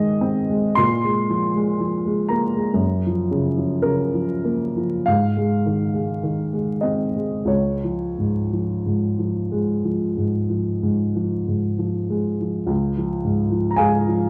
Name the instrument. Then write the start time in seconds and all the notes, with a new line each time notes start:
upright piano
Already playing: G#2 D#3 G#3 D#5
0.21 C4
0.50 G#3
0.75 A#2 C6
1.04 G#3
1.30 F3
1.55 G#3
1.80 F3
2.06 G#3
2.29 A#3 A#5
2.56 G#3
2.74 F#2
3.07 F3
3.31 C#3
3.58 F3
3.82 C#3 A#4
4.14 F3
4.45 A#3
4.77 F3
5.06 G#2 F5
5.37 G#3
5.66 D#3
5.94 G#3
6.23 D#3
6.53 G#3
6.81 C4 D#5
7.16 G#3
7.45 C#2 C#5
7.84 F3
8.19 G#2
8.53 F3
8.86 G#2
9.19 F3
9.52 G#3
9.84 F3
10.17 G#2
10.50 F3
10.83 G#2
11.15 F3
11.48 G#2
11.78 F3
12.10 G#3
12.41 F3
12.67 C#2
12.98 F3
13.24 G#2
13.51 F3
13.71 A#5
13.76 G#2 G#4 F5 G#5
14.08 F3